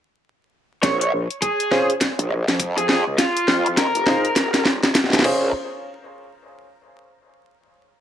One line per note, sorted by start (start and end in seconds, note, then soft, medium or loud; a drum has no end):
0.83 1.28 A#1 loud
0.83 0.95 C#5 medium
0.83 kick medium
0.83 snare soft
0.83 closed hi-hat medium
1.01 1.09 C#5 medium
1.01 closed hi-hat medium
1.31 closed hi-hat soft
1.42 1.89 G#4 medium
1.42 kick loud
1.42 closed hi-hat medium
1.60 closed hi-hat medium
1.71 1.88 C#4 medium
1.71 1.88 F4 medium
1.71 1.88 G#4 medium
1.71 1.88 C5 medium
1.71 cross-stick soft
1.71 snare medium
1.90 closed hi-hat soft
2.01 kick medium
2.01 snare medium
2.01 closed hi-hat medium
2.19 2.45 A#1 medium
2.19 closed hi-hat medium
2.30 cross-stick soft
2.48 3.04 F2 loud
2.48 snare medium
2.48 closed hi-hat soft
2.60 kick medium
2.60 closed hi-hat medium
2.78 2.85 G#4 medium
2.78 closed hi-hat medium
2.89 3.01 G#4 medium
2.89 snare medium
3.07 3.17 C#2 loud
3.18 3.66 F4 medium
3.18 kick loud
3.18 snare medium
3.18 closed hi-hat medium
3.37 closed hi-hat medium
3.48 3.92 F2 medium
3.48 snare medium
3.66 closed hi-hat soft
3.77 4.61 A#4 loud
3.77 kick loud
3.77 snare medium
3.77 closed hi-hat medium
3.95 4.05 F1 loud
3.95 closed hi-hat medium
4.07 4.23 D#4 medium
4.07 4.23 F4 medium
4.07 4.23 G#4 medium
4.07 4.23 C5 medium
4.07 snare medium
4.25 closed hi-hat soft
4.36 4.64 D#1 loud
4.36 kick loud
4.36 snare medium
4.36 closed hi-hat medium
4.54 snare medium
4.54 closed hi-hat medium
4.66 5.23 D#1 loud
4.66 snare medium
4.84 snare medium
4.84 closed hi-hat soft
4.95 kick loud
4.95 snare loud
4.95 closed hi-hat medium
5.04 snare soft
5.10 snare medium
5.13 snare medium
5.13 closed hi-hat medium
5.15 snare medium
5.19 snare medium
5.23 5.52 A#1 loud
5.23 5.48 C#4 medium
5.23 5.48 F4 medium
5.23 5.48 G#4 medium
5.23 5.48 C5 medium
5.23 kick loud
5.23 snare medium
5.23 crash medium